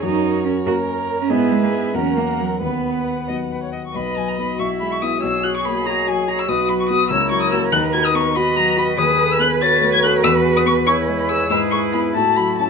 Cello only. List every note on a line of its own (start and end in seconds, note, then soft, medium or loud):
0.04 0.45 D#4 medium
0.46 0.54 C#4 medium
0.67 0.75 F#4 medium
1.21 1.32 C#4 medium
1.31 1.53 B3 medium
1.52 1.65 G#3 medium
1.63 1.74 A#3 medium
1.73 1.94 B3 medium
1.95 2.18 C#4 medium
2.17 2.41 A#3 medium
2.40 2.64 F#3 medium
2.63 3.29 B3 medium
4.60 5.19 E4 medium
5.23 6.49 G#4 medium
6.48 7.13 F#4 medium
7.11 8.37 A#4 medium
8.36 11.51 B4 medium
11.52 12.15 G#4 medium
12.16 12.70 E4 medium